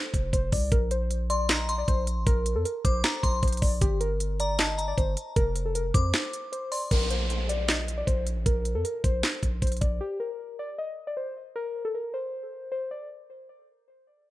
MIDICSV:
0, 0, Header, 1, 6, 480
1, 0, Start_track
1, 0, Key_signature, -2, "major"
1, 0, Tempo, 387097
1, 890, Time_signature, 4, 2, 24, 8
1, 17736, End_track
2, 0, Start_track
2, 0, Title_t, "Synth bell"
2, 0, Program_c, 0, 98
2, 1612, Note_on_c, 0, 84, 84
2, 1839, Note_off_c, 0, 84, 0
2, 1847, Note_on_c, 0, 82, 95
2, 2077, Note_off_c, 0, 82, 0
2, 2095, Note_on_c, 0, 84, 86
2, 2769, Note_off_c, 0, 84, 0
2, 3529, Note_on_c, 0, 86, 74
2, 3758, Note_off_c, 0, 86, 0
2, 3770, Note_on_c, 0, 82, 90
2, 3998, Note_off_c, 0, 82, 0
2, 4010, Note_on_c, 0, 84, 92
2, 4238, Note_off_c, 0, 84, 0
2, 5459, Note_on_c, 0, 82, 91
2, 5683, Note_off_c, 0, 82, 0
2, 5689, Note_on_c, 0, 81, 89
2, 5918, Note_off_c, 0, 81, 0
2, 5925, Note_on_c, 0, 82, 80
2, 6604, Note_off_c, 0, 82, 0
2, 7368, Note_on_c, 0, 86, 81
2, 8280, Note_off_c, 0, 86, 0
2, 8330, Note_on_c, 0, 84, 81
2, 8558, Note_off_c, 0, 84, 0
2, 17736, End_track
3, 0, Start_track
3, 0, Title_t, "Synth keys"
3, 0, Program_c, 1, 88
3, 0, Note_on_c, 1, 72, 83
3, 367, Note_off_c, 1, 72, 0
3, 409, Note_on_c, 1, 72, 84
3, 621, Note_off_c, 1, 72, 0
3, 649, Note_on_c, 1, 74, 80
3, 861, Note_off_c, 1, 74, 0
3, 894, Note_on_c, 1, 70, 88
3, 1104, Note_off_c, 1, 70, 0
3, 1131, Note_on_c, 1, 72, 84
3, 1582, Note_off_c, 1, 72, 0
3, 1609, Note_on_c, 1, 74, 84
3, 1821, Note_off_c, 1, 74, 0
3, 1851, Note_on_c, 1, 75, 82
3, 2189, Note_off_c, 1, 75, 0
3, 2210, Note_on_c, 1, 74, 89
3, 2316, Note_off_c, 1, 74, 0
3, 2328, Note_on_c, 1, 72, 79
3, 2541, Note_off_c, 1, 72, 0
3, 2809, Note_on_c, 1, 70, 98
3, 3148, Note_off_c, 1, 70, 0
3, 3170, Note_on_c, 1, 69, 91
3, 3276, Note_off_c, 1, 69, 0
3, 3290, Note_on_c, 1, 70, 81
3, 3502, Note_off_c, 1, 70, 0
3, 3530, Note_on_c, 1, 72, 92
3, 4207, Note_off_c, 1, 72, 0
3, 4253, Note_on_c, 1, 72, 73
3, 4463, Note_off_c, 1, 72, 0
3, 4486, Note_on_c, 1, 74, 77
3, 4699, Note_off_c, 1, 74, 0
3, 4728, Note_on_c, 1, 67, 96
3, 4941, Note_off_c, 1, 67, 0
3, 4967, Note_on_c, 1, 70, 87
3, 5420, Note_off_c, 1, 70, 0
3, 5454, Note_on_c, 1, 74, 91
3, 5664, Note_off_c, 1, 74, 0
3, 5692, Note_on_c, 1, 75, 84
3, 6029, Note_off_c, 1, 75, 0
3, 6049, Note_on_c, 1, 74, 88
3, 6155, Note_off_c, 1, 74, 0
3, 6168, Note_on_c, 1, 72, 78
3, 6380, Note_off_c, 1, 72, 0
3, 6649, Note_on_c, 1, 70, 102
3, 6988, Note_off_c, 1, 70, 0
3, 7012, Note_on_c, 1, 69, 96
3, 7117, Note_off_c, 1, 69, 0
3, 7132, Note_on_c, 1, 70, 89
3, 7343, Note_off_c, 1, 70, 0
3, 7369, Note_on_c, 1, 72, 84
3, 8046, Note_off_c, 1, 72, 0
3, 8089, Note_on_c, 1, 72, 85
3, 8301, Note_off_c, 1, 72, 0
3, 8328, Note_on_c, 1, 74, 81
3, 8541, Note_off_c, 1, 74, 0
3, 8574, Note_on_c, 1, 70, 83
3, 8784, Note_off_c, 1, 70, 0
3, 8811, Note_on_c, 1, 72, 77
3, 9262, Note_off_c, 1, 72, 0
3, 9289, Note_on_c, 1, 74, 84
3, 9501, Note_off_c, 1, 74, 0
3, 9531, Note_on_c, 1, 75, 80
3, 9869, Note_off_c, 1, 75, 0
3, 9890, Note_on_c, 1, 74, 85
3, 9996, Note_off_c, 1, 74, 0
3, 10008, Note_on_c, 1, 72, 78
3, 10220, Note_off_c, 1, 72, 0
3, 10489, Note_on_c, 1, 70, 90
3, 10828, Note_off_c, 1, 70, 0
3, 10851, Note_on_c, 1, 69, 90
3, 10956, Note_off_c, 1, 69, 0
3, 10970, Note_on_c, 1, 70, 73
3, 11181, Note_off_c, 1, 70, 0
3, 11210, Note_on_c, 1, 72, 89
3, 11887, Note_off_c, 1, 72, 0
3, 11933, Note_on_c, 1, 72, 71
3, 12143, Note_off_c, 1, 72, 0
3, 12165, Note_on_c, 1, 74, 75
3, 12379, Note_off_c, 1, 74, 0
3, 12408, Note_on_c, 1, 67, 90
3, 12620, Note_off_c, 1, 67, 0
3, 12646, Note_on_c, 1, 70, 83
3, 13099, Note_off_c, 1, 70, 0
3, 13134, Note_on_c, 1, 74, 89
3, 13344, Note_off_c, 1, 74, 0
3, 13372, Note_on_c, 1, 75, 78
3, 13710, Note_off_c, 1, 75, 0
3, 13729, Note_on_c, 1, 74, 80
3, 13835, Note_off_c, 1, 74, 0
3, 13848, Note_on_c, 1, 72, 73
3, 14060, Note_off_c, 1, 72, 0
3, 14330, Note_on_c, 1, 70, 100
3, 14668, Note_off_c, 1, 70, 0
3, 14692, Note_on_c, 1, 69, 87
3, 14797, Note_off_c, 1, 69, 0
3, 14812, Note_on_c, 1, 70, 80
3, 15023, Note_off_c, 1, 70, 0
3, 15050, Note_on_c, 1, 72, 80
3, 15727, Note_off_c, 1, 72, 0
3, 15769, Note_on_c, 1, 72, 77
3, 15981, Note_off_c, 1, 72, 0
3, 16009, Note_on_c, 1, 74, 74
3, 16221, Note_off_c, 1, 74, 0
3, 17736, End_track
4, 0, Start_track
4, 0, Title_t, "808-style bass"
4, 0, Program_c, 2, 38
4, 170, Note_on_c, 2, 29, 105
4, 400, Note_off_c, 2, 29, 0
4, 410, Note_on_c, 2, 29, 113
4, 641, Note_off_c, 2, 29, 0
4, 651, Note_on_c, 2, 36, 105
4, 881, Note_off_c, 2, 36, 0
4, 890, Note_on_c, 2, 34, 114
4, 2281, Note_off_c, 2, 34, 0
4, 2330, Note_on_c, 2, 34, 109
4, 2690, Note_on_c, 2, 33, 106
4, 2709, Note_off_c, 2, 34, 0
4, 2804, Note_off_c, 2, 33, 0
4, 2810, Note_on_c, 2, 34, 110
4, 3170, Note_on_c, 2, 41, 102
4, 3189, Note_off_c, 2, 34, 0
4, 3284, Note_off_c, 2, 41, 0
4, 3530, Note_on_c, 2, 34, 107
4, 3760, Note_off_c, 2, 34, 0
4, 4010, Note_on_c, 2, 34, 104
4, 4240, Note_off_c, 2, 34, 0
4, 4250, Note_on_c, 2, 34, 106
4, 4481, Note_off_c, 2, 34, 0
4, 4492, Note_on_c, 2, 34, 105
4, 4721, Note_off_c, 2, 34, 0
4, 4730, Note_on_c, 2, 31, 114
4, 6121, Note_off_c, 2, 31, 0
4, 6170, Note_on_c, 2, 31, 110
4, 6401, Note_off_c, 2, 31, 0
4, 6650, Note_on_c, 2, 29, 110
4, 7342, Note_off_c, 2, 29, 0
4, 7370, Note_on_c, 2, 41, 109
4, 7601, Note_off_c, 2, 41, 0
4, 8571, Note_on_c, 2, 34, 110
4, 9961, Note_off_c, 2, 34, 0
4, 10011, Note_on_c, 2, 34, 104
4, 10370, Note_on_c, 2, 33, 101
4, 10389, Note_off_c, 2, 34, 0
4, 10484, Note_off_c, 2, 33, 0
4, 10490, Note_on_c, 2, 34, 109
4, 10850, Note_on_c, 2, 41, 101
4, 10869, Note_off_c, 2, 34, 0
4, 10964, Note_off_c, 2, 41, 0
4, 11210, Note_on_c, 2, 34, 103
4, 11441, Note_off_c, 2, 34, 0
4, 11690, Note_on_c, 2, 34, 100
4, 11920, Note_off_c, 2, 34, 0
4, 11930, Note_on_c, 2, 34, 105
4, 12161, Note_off_c, 2, 34, 0
4, 12171, Note_on_c, 2, 34, 106
4, 12401, Note_off_c, 2, 34, 0
4, 17736, End_track
5, 0, Start_track
5, 0, Title_t, "Downlifter"
5, 0, Program_c, 3, 103
5, 8571, Note_on_c, 3, 60, 84
5, 12410, Note_off_c, 3, 60, 0
5, 17736, End_track
6, 0, Start_track
6, 0, Title_t, "Drums"
6, 170, Note_on_c, 9, 36, 97
6, 174, Note_on_c, 9, 42, 82
6, 294, Note_off_c, 9, 36, 0
6, 298, Note_off_c, 9, 42, 0
6, 410, Note_on_c, 9, 36, 95
6, 414, Note_on_c, 9, 42, 76
6, 534, Note_off_c, 9, 36, 0
6, 538, Note_off_c, 9, 42, 0
6, 649, Note_on_c, 9, 46, 89
6, 651, Note_on_c, 9, 36, 100
6, 773, Note_off_c, 9, 46, 0
6, 775, Note_off_c, 9, 36, 0
6, 890, Note_on_c, 9, 36, 114
6, 890, Note_on_c, 9, 42, 77
6, 1014, Note_off_c, 9, 36, 0
6, 1014, Note_off_c, 9, 42, 0
6, 1129, Note_on_c, 9, 42, 77
6, 1253, Note_off_c, 9, 42, 0
6, 1371, Note_on_c, 9, 42, 76
6, 1495, Note_off_c, 9, 42, 0
6, 1612, Note_on_c, 9, 42, 80
6, 1736, Note_off_c, 9, 42, 0
6, 1847, Note_on_c, 9, 42, 74
6, 1850, Note_on_c, 9, 38, 119
6, 1857, Note_on_c, 9, 39, 98
6, 1971, Note_off_c, 9, 42, 0
6, 1974, Note_off_c, 9, 38, 0
6, 1981, Note_off_c, 9, 39, 0
6, 2094, Note_on_c, 9, 42, 75
6, 2218, Note_off_c, 9, 42, 0
6, 2330, Note_on_c, 9, 36, 95
6, 2334, Note_on_c, 9, 42, 77
6, 2454, Note_off_c, 9, 36, 0
6, 2458, Note_off_c, 9, 42, 0
6, 2569, Note_on_c, 9, 42, 90
6, 2693, Note_off_c, 9, 42, 0
6, 2810, Note_on_c, 9, 36, 117
6, 2810, Note_on_c, 9, 42, 79
6, 2934, Note_off_c, 9, 36, 0
6, 2934, Note_off_c, 9, 42, 0
6, 3048, Note_on_c, 9, 42, 77
6, 3172, Note_off_c, 9, 42, 0
6, 3291, Note_on_c, 9, 42, 80
6, 3415, Note_off_c, 9, 42, 0
6, 3530, Note_on_c, 9, 36, 92
6, 3532, Note_on_c, 9, 42, 82
6, 3654, Note_off_c, 9, 36, 0
6, 3656, Note_off_c, 9, 42, 0
6, 3767, Note_on_c, 9, 42, 73
6, 3770, Note_on_c, 9, 38, 121
6, 3777, Note_on_c, 9, 39, 99
6, 3891, Note_off_c, 9, 42, 0
6, 3894, Note_off_c, 9, 38, 0
6, 3901, Note_off_c, 9, 39, 0
6, 4009, Note_on_c, 9, 36, 100
6, 4014, Note_on_c, 9, 42, 78
6, 4133, Note_off_c, 9, 36, 0
6, 4138, Note_off_c, 9, 42, 0
6, 4250, Note_on_c, 9, 36, 97
6, 4250, Note_on_c, 9, 42, 64
6, 4310, Note_off_c, 9, 42, 0
6, 4310, Note_on_c, 9, 42, 65
6, 4371, Note_off_c, 9, 42, 0
6, 4371, Note_on_c, 9, 42, 64
6, 4374, Note_off_c, 9, 36, 0
6, 4430, Note_off_c, 9, 42, 0
6, 4430, Note_on_c, 9, 42, 65
6, 4490, Note_on_c, 9, 46, 88
6, 4492, Note_on_c, 9, 36, 101
6, 4554, Note_off_c, 9, 42, 0
6, 4614, Note_off_c, 9, 46, 0
6, 4616, Note_off_c, 9, 36, 0
6, 4730, Note_on_c, 9, 36, 117
6, 4730, Note_on_c, 9, 42, 81
6, 4854, Note_off_c, 9, 36, 0
6, 4854, Note_off_c, 9, 42, 0
6, 4969, Note_on_c, 9, 42, 77
6, 5093, Note_off_c, 9, 42, 0
6, 5212, Note_on_c, 9, 42, 81
6, 5336, Note_off_c, 9, 42, 0
6, 5452, Note_on_c, 9, 42, 81
6, 5576, Note_off_c, 9, 42, 0
6, 5687, Note_on_c, 9, 42, 75
6, 5690, Note_on_c, 9, 38, 125
6, 5697, Note_on_c, 9, 39, 100
6, 5811, Note_off_c, 9, 42, 0
6, 5814, Note_off_c, 9, 38, 0
6, 5821, Note_off_c, 9, 39, 0
6, 5934, Note_on_c, 9, 42, 75
6, 6058, Note_off_c, 9, 42, 0
6, 6170, Note_on_c, 9, 36, 98
6, 6174, Note_on_c, 9, 42, 74
6, 6294, Note_off_c, 9, 36, 0
6, 6298, Note_off_c, 9, 42, 0
6, 6410, Note_on_c, 9, 42, 86
6, 6534, Note_off_c, 9, 42, 0
6, 6650, Note_on_c, 9, 42, 81
6, 6651, Note_on_c, 9, 36, 117
6, 6774, Note_off_c, 9, 42, 0
6, 6775, Note_off_c, 9, 36, 0
6, 6889, Note_on_c, 9, 42, 78
6, 7013, Note_off_c, 9, 42, 0
6, 7132, Note_on_c, 9, 42, 78
6, 7256, Note_off_c, 9, 42, 0
6, 7370, Note_on_c, 9, 36, 93
6, 7372, Note_on_c, 9, 42, 84
6, 7494, Note_off_c, 9, 36, 0
6, 7496, Note_off_c, 9, 42, 0
6, 7608, Note_on_c, 9, 42, 71
6, 7610, Note_on_c, 9, 38, 120
6, 7617, Note_on_c, 9, 39, 96
6, 7732, Note_off_c, 9, 42, 0
6, 7734, Note_off_c, 9, 38, 0
6, 7741, Note_off_c, 9, 39, 0
6, 7854, Note_on_c, 9, 42, 80
6, 7978, Note_off_c, 9, 42, 0
6, 8094, Note_on_c, 9, 42, 75
6, 8218, Note_off_c, 9, 42, 0
6, 8330, Note_on_c, 9, 46, 85
6, 8454, Note_off_c, 9, 46, 0
6, 8571, Note_on_c, 9, 36, 116
6, 8571, Note_on_c, 9, 42, 79
6, 8571, Note_on_c, 9, 49, 93
6, 8695, Note_off_c, 9, 36, 0
6, 8695, Note_off_c, 9, 42, 0
6, 8695, Note_off_c, 9, 49, 0
6, 8810, Note_on_c, 9, 42, 74
6, 8934, Note_off_c, 9, 42, 0
6, 9052, Note_on_c, 9, 42, 74
6, 9176, Note_off_c, 9, 42, 0
6, 9292, Note_on_c, 9, 42, 79
6, 9416, Note_off_c, 9, 42, 0
6, 9528, Note_on_c, 9, 42, 69
6, 9531, Note_on_c, 9, 38, 117
6, 9538, Note_on_c, 9, 39, 95
6, 9652, Note_off_c, 9, 42, 0
6, 9655, Note_off_c, 9, 38, 0
6, 9662, Note_off_c, 9, 39, 0
6, 9774, Note_on_c, 9, 42, 71
6, 9898, Note_off_c, 9, 42, 0
6, 10011, Note_on_c, 9, 36, 91
6, 10014, Note_on_c, 9, 42, 74
6, 10135, Note_off_c, 9, 36, 0
6, 10138, Note_off_c, 9, 42, 0
6, 10250, Note_on_c, 9, 42, 85
6, 10374, Note_off_c, 9, 42, 0
6, 10490, Note_on_c, 9, 36, 111
6, 10491, Note_on_c, 9, 42, 79
6, 10614, Note_off_c, 9, 36, 0
6, 10615, Note_off_c, 9, 42, 0
6, 10729, Note_on_c, 9, 42, 73
6, 10853, Note_off_c, 9, 42, 0
6, 10972, Note_on_c, 9, 42, 74
6, 11096, Note_off_c, 9, 42, 0
6, 11210, Note_on_c, 9, 36, 91
6, 11212, Note_on_c, 9, 42, 78
6, 11334, Note_off_c, 9, 36, 0
6, 11336, Note_off_c, 9, 42, 0
6, 11447, Note_on_c, 9, 42, 70
6, 11450, Note_on_c, 9, 38, 113
6, 11457, Note_on_c, 9, 39, 96
6, 11571, Note_off_c, 9, 42, 0
6, 11574, Note_off_c, 9, 38, 0
6, 11581, Note_off_c, 9, 39, 0
6, 11690, Note_on_c, 9, 36, 95
6, 11694, Note_on_c, 9, 42, 77
6, 11814, Note_off_c, 9, 36, 0
6, 11818, Note_off_c, 9, 42, 0
6, 11930, Note_on_c, 9, 36, 90
6, 11930, Note_on_c, 9, 42, 61
6, 11990, Note_off_c, 9, 42, 0
6, 11990, Note_on_c, 9, 42, 60
6, 12050, Note_off_c, 9, 42, 0
6, 12050, Note_on_c, 9, 42, 60
6, 12054, Note_off_c, 9, 36, 0
6, 12110, Note_off_c, 9, 42, 0
6, 12110, Note_on_c, 9, 42, 58
6, 12169, Note_off_c, 9, 42, 0
6, 12169, Note_on_c, 9, 42, 76
6, 12171, Note_on_c, 9, 36, 95
6, 12293, Note_off_c, 9, 42, 0
6, 12295, Note_off_c, 9, 36, 0
6, 17736, End_track
0, 0, End_of_file